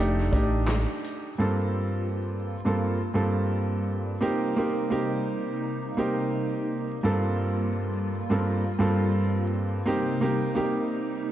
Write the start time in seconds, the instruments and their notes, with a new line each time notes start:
Already playing: fingered electric bass F1, grand piano A3 D4 D#4
0.00 grand piano G4
0.18 snare
0.32 fingered electric bass A1, grand piano A3 D4 D#4 G4, kick, closed hi-hat
0.67 snare, clap, closed hi-hat
1.04 closed hi-hat
1.38 grand piano G2 A#3 C4 F4 A4, analog synth pad G3 A#3 F4
2.65 grand piano G2 A#3 C4 F4 A4
3.14 grand piano G2 A#3 C4 F4 A4
4.21 analog synth pad C3 D#4, grand piano A#3 C4 D#4 G4
4.56 grand piano A#3 C4 D#4 G4
4.90 grand piano A#3 C4 D#4 G4
5.97 grand piano A#3 C4 D#4 G4
7.03 grand piano G2 A#3 C4 F4 A4, analog synth pad G3 F4
8.30 grand piano G2 A#3 C4 F4 A4
8.79 grand piano G2 A#3 C4 F4 A4
9.86 analog synth pad C3 G3 D#4, grand piano A#3 C4 D#4 G4
10.21 grand piano A#3 C4 D#4 G4
10.55 grand piano A#3 C4 D#4 G4